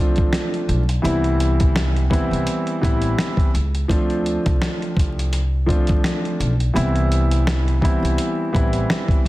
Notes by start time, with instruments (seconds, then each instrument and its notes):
Already playing: upright bass C2, grand piano F3 A3 C4 D4 F4
0.16 upright bass D2, kick, closed hi-hat
0.33 snare, closed hi-hat
0.54 closed hi-hat
0.69 upright bass B1, closed hi-hat
0.89 closed hi-hat
1.02 upright bass C2, grand piano E3 G3 B3 C4 E4, closed hi-hat
1.24 closed hi-hat
1.40 closed hi-hat
1.60 kick, closed hi-hat
1.76 snare, closed hi-hat
1.96 closed hi-hat
2.10 grand piano E3 G3 B3 C4 E4, kick, closed hi-hat
2.31 upright bass C2, closed hi-hat
2.47 closed hi-hat
2.67 closed hi-hat
2.81 upright bass A1, grand piano E3 G3 B3 C4 E4, kick, closed hi-hat
3.02 closed hi-hat
3.18 snare, closed hi-hat
3.37 kick, closed hi-hat
3.54 upright bass C#2, closed hi-hat
3.75 closed hi-hat
3.88 upright bass D2, grand piano F3 A3 C4 D4 F4, kick, closed hi-hat
4.10 closed hi-hat
4.26 closed hi-hat
4.46 upright bass C2, kick, closed hi-hat
4.62 snare, closed hi-hat
4.82 closed hi-hat
4.97 upright bass C2, kick, closed hi-hat
5.19 closed hi-hat
5.33 closed hi-hat
5.66 grand piano F3 A3 C4 D4 F4, kick, closed hi-hat
5.87 upright bass D2, kick, closed hi-hat
6.04 snare, closed hi-hat
6.25 closed hi-hat
6.40 upright bass B1, closed hi-hat
6.60 closed hi-hat
6.73 upright bass C2, grand piano E3 G3 B3 C4 E4, closed hi-hat
6.96 closed hi-hat
7.12 closed hi-hat
7.31 closed hi-hat
7.47 snare, closed hi-hat
7.68 closed hi-hat
7.81 grand piano E3 G3 B3 C4 E4, kick, closed hi-hat
8.03 upright bass C2, closed hi-hat
8.18 closed hi-hat
8.53 upright bass A1, grand piano E3 G3 B3 C4 E4, kick, closed hi-hat
8.73 closed hi-hat
8.90 snare, closed hi-hat
9.08 kick, closed hi-hat